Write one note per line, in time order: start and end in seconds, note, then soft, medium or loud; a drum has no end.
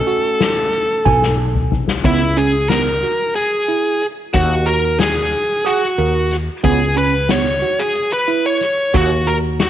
0.00 2.00 A3 medium
0.00 2.00 C#4 soft
0.00 2.00 D#4 medium
0.00 1.35 A4 medium
0.07 0.40 F#4 medium
0.07 closed hi-hat medium
0.41 snare loud
0.41 closed hi-hat medium
0.73 closed hi-hat medium
1.05 1.80 B1 medium
1.05 1.22 G#5 medium
1.05 kick medium
1.05 high tom medium
1.22 snare medium
1.38 1.71 A4 medium
1.55 mid tom medium
1.72 floor tom loud
1.88 snare medium
2.04 3.03 C#2 medium
2.04 2.21 B3 medium
2.04 2.38 E4 medium
2.04 kick medium
2.04 closed hi-hat medium
2.37 2.53 C#4 medium
2.37 2.69 G#4 medium
2.37 closed hi-hat soft
2.69 2.87 B3 medium
2.69 3.35 A#4 medium
2.69 snare medium
2.69 closed hi-hat medium
3.03 3.36 F#4 medium
3.03 closed hi-hat medium
3.35 4.05 G#4 medium
3.35 closed hi-hat medium
3.68 4.02 E4 medium
3.68 closed hi-hat medium
4.02 closed hi-hat medium
4.34 5.33 D#2 medium
4.34 4.50 F#4 medium
4.34 4.68 F#4 medium
4.34 kick medium
4.34 closed hi-hat medium
4.66 5.00 F#4 medium
4.66 4.97 A#4 medium
4.66 closed hi-hat medium
5.00 5.67 G#4 medium
5.00 snare loud
5.00 closed hi-hat medium
5.33 closed hi-hat medium
5.65 6.36 F#4 medium
5.65 5.82 G#4 medium
5.65 closed hi-hat medium
5.98 6.47 D#2 medium
5.98 6.32 A#4 medium
5.98 closed hi-hat soft
6.31 snare soft
6.31 closed hi-hat medium
6.63 7.63 C#2 medium
6.63 6.80 B3 medium
6.63 6.95 G#4 medium
6.63 kick medium
6.63 closed hi-hat medium
6.96 7.13 C#4 medium
6.96 7.31 B4 medium
6.96 closed hi-hat medium
7.29 7.46 B3 medium
7.29 7.81 C#5 loud
7.29 snare loud
7.29 closed hi-hat medium
7.62 7.96 F#4 medium
7.62 closed hi-hat soft
7.79 8.13 G#4 medium
7.95 closed hi-hat medium
8.13 8.46 B4 medium
8.28 8.61 E4 medium
8.28 closed hi-hat soft
8.46 8.96 C#5 medium
8.61 snare soft
8.61 closed hi-hat medium
8.94 9.70 D#2 loud
8.94 9.11 F#4 medium
8.94 9.28 F#4 medium
8.94 kick medium
8.94 closed hi-hat medium
9.27 9.60 F#4 medium
9.27 9.36 A#4 medium
9.27 closed hi-hat medium
9.60 9.70 F#4 medium
9.60 snare loud
9.60 closed hi-hat medium